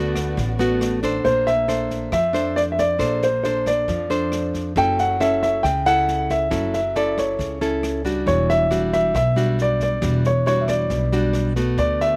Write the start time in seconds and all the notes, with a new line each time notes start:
Already playing: D2 D3 A3 B3 F#4 D5
0.15 kick, cross-stick, snare
0.37 A1 A2, kick, snare
0.59 A3 B3 F#4, snare
0.81 cross-stick, snare
1.03 D4 A4 C5, kick, snare
1.25 A#1 A#3 C5, kick, snare
1.47 E5, snare
1.68 D4 A4 C5, cross-stick, snare
1.90 kick, snare
2.12 F2 F3 E5, kick, cross-stick, snare
2.33 D4 A4 C5, snare
2.56 D5, snare
2.72 E5
2.78 D5, kick, snare
2.99 A#1 A#3 D4 A4 C5, kick, cross-stick, snare
3.22 C5, snare
3.44 D4 A4 C5, snare
3.66 D5, kick, cross-stick, snare
3.88 F2 F3, kick, snare
4.10 D4 A4 C5, snare
4.32 cross-stick, snare
4.54 kick, snare
4.76 F#1 F#3 C#4 E4 A4 G5, kick, snare
4.98 F#5, snare
5.20 C#4 E4 A4 E5, cross-stick, snare
5.42 E5, kick, snare
5.63 C#2 C#3 G5, kick, cross-stick, snare
5.86 C#4 E4 A4 F#5, snare
6.08 snare
6.30 E5, kick, snare
6.51 F#1 F#3 C#4 E4 A4, kick, cross-stick, snare
6.73 E5, snare
6.95 C#4 E4 A4 D5, snare
7.17 C#5, kick, cross-stick, snare
7.39 C#2 C#3, kick, snare
7.61 C#4 E4 A4, snare
7.83 cross-stick, snare
8.05 G3 D4 F#4, kick, snare
8.26 E1 E3 C#5, kick, snare
8.50 E5, snare
8.71 G3 D4 F#4, cross-stick, snare
8.93 E5, kick, snare
9.14 B1 B2 E5, kick, cross-stick, snare
9.36 G3 D4 F#4, snare
9.58 D5, snare
9.80 D5, kick, snare
10.01 E1 E3 G3 D4 F#4, kick, cross-stick, snare
10.24 C#5, snare
10.46 G3 D4 F#4 C#5, snare
10.61 E5
10.68 D5, kick, cross-stick, snare
10.90 B1 B2, kick, snare
11.12 G3 D4 F#4, snare
11.33 cross-stick, snare
11.56 A3 B3 F#4, kick, snare
11.77 D2 D3 D5, kick, snare
12.00 E5, snare